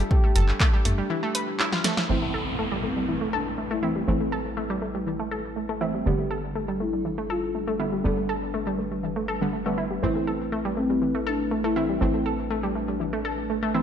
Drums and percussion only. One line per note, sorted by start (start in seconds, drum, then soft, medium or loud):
0.11 kick loud
0.36 closed hi-hat loud
0.48 clap soft
0.60 kick loud
0.60 clap loud
0.85 closed hi-hat medium
1.35 closed hi-hat loud
1.60 clap loud
1.72 snare medium
1.84 snare medium
1.84 closed hi-hat loud
1.97 snare medium
2.09 crash medium